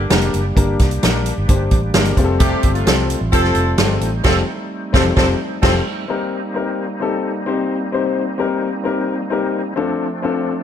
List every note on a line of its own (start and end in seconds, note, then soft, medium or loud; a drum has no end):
0.00 6.06 G3 medium
0.00 2.15 A#3 medium
0.00 2.15 D4 medium
0.00 2.14 G4 medium
0.10 0.29 F1 loud
0.10 0.39 A#3 medium
0.10 0.39 D4 medium
0.10 0.39 G4 medium
0.10 0.40 A#4 medium
0.10 snare loud
0.10 closed hi-hat medium
0.21 closed hi-hat medium
0.34 0.52 F#1 medium
0.34 closed hi-hat medium
0.56 0.75 G1 loud
0.56 0.85 A#3 medium
0.56 0.85 D4 medium
0.56 0.85 G4 medium
0.56 0.86 A#4 medium
0.56 kick loud
0.56 closed hi-hat medium
0.79 0.98 C2 medium
0.79 kick medium
0.79 snare soft
0.79 closed hi-hat medium
0.91 closed hi-hat soft
1.02 1.31 A#1 medium
1.02 1.31 A#3 medium
1.02 1.31 D4 medium
1.02 1.32 G4 medium
1.02 1.32 A#4 medium
1.02 snare medium
1.02 closed hi-hat medium
1.26 closed hi-hat medium
1.38 1.47 G1 medium
1.48 1.67 G1 medium
1.48 1.77 A#3 medium
1.48 1.77 D4 medium
1.48 1.78 G4 medium
1.48 1.78 C5 medium
1.48 kick medium
1.48 closed hi-hat medium
1.71 1.90 A1 medium
1.71 kick medium
1.71 closed hi-hat medium
1.94 2.13 G1 medium
1.94 2.18 A#3 medium
1.94 2.18 D4 medium
1.94 2.17 G4 medium
1.94 2.19 A#4 medium
1.94 snare loud
1.94 closed hi-hat medium
2.05 closed hi-hat medium
2.17 2.54 F1 medium
2.17 6.05 A3 soft
2.17 2.73 C4 medium
2.17 6.05 C4 medium
2.17 4.00 F4 medium
2.17 2.73 F4 medium
2.17 2.73 G4 medium
2.17 2.24 G#4 medium
2.17 kick medium
2.17 closed hi-hat medium
2.24 2.76 A4 medium
2.40 2.73 C3 loud
2.40 2.73 A3 loud
2.40 2.73 G4 loud
2.40 kick loud
2.40 closed hi-hat medium
2.63 2.82 G1 medium
2.63 kick medium
2.63 closed hi-hat medium
2.75 3.08 C3 medium
2.75 3.08 A3 medium
2.75 3.08 F4 medium
2.75 closed hi-hat soft
2.86 3.14 C2 medium
2.86 3.15 C4 medium
2.86 3.15 F4 medium
2.86 3.15 G4 medium
2.86 3.16 A4 medium
2.86 snare medium
2.86 closed hi-hat medium
3.10 closed hi-hat medium
3.21 3.30 A1 medium
3.32 3.51 F1 medium
3.32 3.76 F3 medium
3.32 3.76 C4 loud
3.32 3.61 C4 medium
3.32 3.62 F4 medium
3.32 3.62 G4 medium
3.32 3.76 A4 loud
3.32 3.62 A4 medium
3.32 kick medium
3.32 closed hi-hat medium
3.44 snare soft
3.55 3.74 F1 medium
3.55 closed hi-hat medium
3.78 3.97 G1 medium
3.78 4.07 C4 medium
3.78 4.08 F4 medium
3.78 4.08 G4 medium
3.78 4.08 A4 medium
3.78 snare loud
3.78 closed hi-hat medium
4.01 4.20 A1 medium
4.01 6.07 D#4 medium
4.01 closed hi-hat medium
4.24 4.41 F1 loud
4.24 4.36 F3 medium
4.24 4.40 C4 medium
4.24 4.36 C4 medium
4.24 4.40 F4 medium
4.24 4.41 G4 medium
4.24 4.36 A4 loud
4.24 4.41 A4 medium
4.24 kick loud
4.24 snare loud
4.24 crash medium
4.93 5.10 F1 loud
4.93 5.05 F3 medium
4.93 5.09 C4 loud
4.93 5.06 C4 medium
4.93 5.09 F4 medium
4.93 5.10 G4 loud
4.93 5.06 A4 medium
4.93 5.10 A4 medium
4.93 kick loud
4.93 snare medium
5.16 5.33 F1 medium
5.16 5.28 F3 medium
5.16 5.28 C4 medium
5.16 5.32 C4 medium
5.16 5.33 F4 medium
5.16 5.33 G4 medium
5.16 5.28 A4 loud
5.16 5.33 A4 medium
5.16 kick loud
5.16 snare loud
5.62 5.79 F1 loud
5.62 5.74 F3 medium
5.62 5.74 C4 medium
5.62 5.78 C4 medium
5.62 5.79 F4 medium
5.62 5.79 G4 loud
5.62 5.74 A4 medium
5.62 5.79 A4 medium
5.62 kick loud
5.62 snare loud
5.62 crash medium
6.08 9.73 G3 medium
6.08 9.74 A#3 medium
6.08 6.37 C4 medium
6.08 10.63 C4 medium
6.08 6.38 D#4 medium
6.08 9.74 D#4 medium
6.08 6.38 G4 medium
6.08 6.38 A#4 medium
6.55 6.83 C4 medium
6.55 6.84 D#4 medium
6.55 6.84 G4 medium
6.55 6.84 A#4 medium
7.00 7.29 C4 medium
7.00 7.29 D#4 medium
7.00 7.30 G4 medium
7.00 7.30 A4 medium
7.46 7.75 C4 medium
7.46 7.75 D#4 medium
7.46 7.76 G4 medium
7.46 7.76 C5 medium
7.92 8.21 C4 medium
7.92 8.21 D#4 medium
7.92 8.22 G4 medium
7.92 8.22 C5 medium
8.38 8.67 C4 medium
8.38 8.67 D#4 medium
8.38 8.67 G4 medium
8.38 8.68 A#4 medium
8.84 9.13 C4 medium
8.84 9.13 D#4 medium
8.84 9.13 G4 medium
8.84 9.14 A#4 medium
9.30 9.59 C4 medium
9.30 9.59 D#4 medium
9.30 9.60 G4 medium
9.30 9.60 A#4 medium
9.76 10.63 F3 medium
9.76 10.63 A3 medium
9.76 10.05 C4 medium
9.76 10.05 D4 medium
9.76 10.63 D4 medium
9.76 10.06 F4 medium
9.76 10.06 A4 medium
10.22 10.51 C4 medium
10.22 10.52 D4 medium
10.22 10.52 F4 medium
10.22 10.52 A4 medium